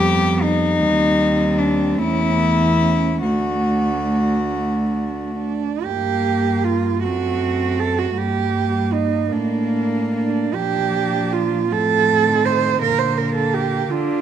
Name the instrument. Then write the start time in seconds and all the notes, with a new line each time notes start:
cello
Already playing: F2 G3 B3 G4
0.42 D#4
0.80 D#2 G3 C4
1.58 D4
1.96 E2 A3 C#4 E4
2.38 B3
2.82 C#4
3.21 D2 A3 D4 F#4
5.37 D4
5.82 G2 A#3 G4
6.64 F4
7.01 F#2 A3 C4 F#4
7.79 A4
7.98 F#4
8.13 G2 G3 A#3
8.18 G4
8.93 D#4
9.27 A2 A#3
9.32 D4
10.16 D4
10.54 A#2 F3 D4 G4
11.32 F4
11.70 A2 F3 C4 A4
12.27 D#3
12.45 C5
12.81 A#2 D3 A#3 A#4
12.99 C5
13.17 A#4
13.35 A4
13.54 G4
13.91 D3 D4 F4